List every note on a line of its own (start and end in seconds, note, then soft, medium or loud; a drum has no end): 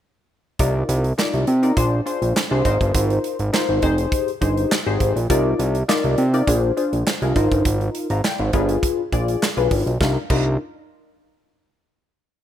0.59 0.84 C2 loud
0.59 1.06 D#4 medium
0.59 1.06 F4 medium
0.59 1.06 A#4 medium
0.59 1.06 D5 loud
0.59 kick loud
0.59 closed hi-hat loud
0.89 1.13 C2 loud
0.89 closed hi-hat medium
1.04 closed hi-hat soft
1.18 1.52 D#4 medium
1.18 1.53 F4 medium
1.18 1.53 A#4 medium
1.18 1.53 D5 loud
1.18 snare loud
1.18 clap medium
1.33 1.45 C2 loud
1.33 closed hi-hat soft
1.47 1.72 C3 loud
1.47 closed hi-hat medium
1.63 1.77 D#4 medium
1.63 1.75 F4 medium
1.63 1.77 A#4 medium
1.63 1.77 D5 medium
1.63 closed hi-hat soft
1.77 2.01 A#1 loud
1.77 2.01 D4 medium
1.77 2.01 F4 medium
1.77 2.01 G#4 medium
1.77 2.01 C5 loud
1.77 kick loud
1.77 closed hi-hat medium
2.06 2.41 D4 medium
2.06 2.41 F4 medium
2.06 2.41 G#4 medium
2.06 2.41 C5 medium
2.06 closed hi-hat medium
2.22 2.33 A#1 medium
2.22 closed hi-hat medium
2.36 snare loud
2.36 clap loud
2.51 2.63 C2 medium
2.51 2.65 D4 medium
2.51 2.64 F4 medium
2.51 2.65 G#4 medium
2.51 2.65 C5 loud
2.65 2.78 G#1 medium
2.65 3.36 D#4 medium
2.65 3.37 F4 medium
2.65 3.37 A#4 medium
2.65 3.37 C5 loud
2.65 kick medium
2.65 closed hi-hat medium
2.81 2.92 G1 medium
2.81 kick medium
2.81 closed hi-hat soft
2.94 3.19 G#1 loud
2.94 kick loud
2.94 closed hi-hat loud
3.10 closed hi-hat soft
3.24 closed hi-hat medium
3.39 3.51 G#1 loud
3.39 closed hi-hat soft
3.53 3.81 D#4 medium
3.53 3.83 F4 medium
3.53 3.83 A#4 medium
3.53 3.82 C5 loud
3.53 snare loud
3.53 clap medium
3.69 3.80 G#1 loud
3.82 4.07 F1 loud
3.82 4.30 D#4 medium
3.82 4.31 G4 medium
3.82 4.31 G#4 medium
3.82 4.31 C5 loud
3.82 kick medium
3.82 closed hi-hat medium
3.98 closed hi-hat soft
4.12 kick loud
4.12 closed hi-hat medium
4.28 closed hi-hat soft
4.41 4.66 G1 medium
4.41 4.76 D#4 medium
4.41 4.76 G4 medium
4.41 4.76 G#4 medium
4.41 4.76 C5 medium
4.41 kick medium
4.41 closed hi-hat medium
4.57 closed hi-hat soft
4.72 snare loud
4.72 clap loud
4.86 4.98 G#1 medium
4.86 5.20 D#4 medium
4.86 5.20 G4 medium
4.86 5.21 G#4 medium
4.86 5.21 C5 medium
5.00 5.13 G#1 loud
5.00 kick medium
5.00 closed hi-hat medium
5.16 5.27 A#1 medium
5.16 closed hi-hat medium
5.30 5.54 C2 loud
5.30 5.76 D#4 medium
5.30 5.76 F4 medium
5.30 5.76 A#4 medium
5.30 5.77 D5 loud
5.30 kick loud
5.30 closed hi-hat loud
5.59 5.83 C2 loud
5.59 closed hi-hat medium
5.75 closed hi-hat soft
5.88 6.23 D#4 medium
5.88 6.23 F4 medium
5.88 6.23 A#4 medium
5.88 6.23 D5 loud
5.88 snare loud
5.88 clap medium
6.04 6.16 C2 loud
6.04 closed hi-hat soft
6.18 6.42 C3 medium
6.18 closed hi-hat medium
6.33 6.47 D#4 medium
6.33 6.46 F4 medium
6.33 6.48 A#4 medium
6.33 6.48 D5 loud
6.33 closed hi-hat soft
6.47 6.72 A#1 loud
6.47 6.71 D4 medium
6.47 6.71 F4 medium
6.47 6.72 G#4 medium
6.47 6.72 C5 loud
6.47 kick loud
6.47 closed hi-hat loud
6.77 7.11 D4 medium
6.77 7.11 F4 medium
6.77 7.12 G#4 medium
6.77 7.12 C5 medium
6.77 closed hi-hat medium
6.93 7.04 A#1 medium
6.93 closed hi-hat soft
7.07 snare loud
7.07 clap medium
7.22 7.33 C2 loud
7.22 7.36 D4 medium
7.22 7.35 F4 medium
7.22 7.36 G#4 medium
7.22 7.35 A#4 medium
7.22 closed hi-hat soft
7.36 7.49 G#1 loud
7.36 8.07 D#4 medium
7.36 8.07 F4 medium
7.36 8.07 A#4 medium
7.36 7.66 C5 loud
7.36 kick medium
7.36 closed hi-hat medium
7.51 7.63 G1 medium
7.51 kick medium
7.51 closed hi-hat medium
7.65 7.90 G#1 loud
7.65 kick loud
7.65 closed hi-hat loud
7.81 closed hi-hat soft
7.95 closed hi-hat medium
8.10 8.22 G#1 medium
8.10 8.24 F5 medium
8.10 8.24 A#5 medium
8.10 closed hi-hat soft
8.24 8.40 D5 medium
8.24 8.39 G5 medium
8.24 snare loud
8.24 clap medium
8.39 8.51 G#1 loud
8.39 8.68 C5 medium
8.39 8.68 F5 medium
8.53 8.78 G1 loud
8.53 9.01 D4 medium
8.53 9.01 F4 medium
8.53 9.01 G#4 medium
8.53 9.02 B4 loud
8.53 kick loud
8.53 closed hi-hat medium
8.69 closed hi-hat medium
8.83 kick loud
8.83 closed hi-hat medium
9.12 9.37 A#1 medium
9.12 9.47 D4 medium
9.12 9.47 F4 medium
9.12 9.47 G#4 medium
9.12 9.47 D5 medium
9.12 kick medium
9.12 closed hi-hat medium
9.28 closed hi-hat soft
9.43 snare loud
9.43 clap medium
9.57 9.69 B1 loud
9.57 9.91 D4 medium
9.57 9.91 F4 medium
9.57 9.91 G#4 medium
9.57 9.92 B4 medium
9.57 closed hi-hat soft
9.71 9.84 G#1 medium
9.71 kick loud
9.71 open hi-hat medium
9.86 9.98 B1 medium
9.86 closed hi-hat soft
10.01 10.18 C2 loud
10.01 10.18 D4 medium
10.01 10.18 D#4 medium
10.01 10.18 F4 medium
10.01 10.18 A#4 loud
10.01 kick loud
10.01 snare medium
10.30 10.57 C2 loud
10.30 10.57 D4 medium
10.30 10.57 D#4 medium
10.30 10.58 F4 medium
10.30 10.58 A#4 medium
10.30 kick loud
10.30 crash medium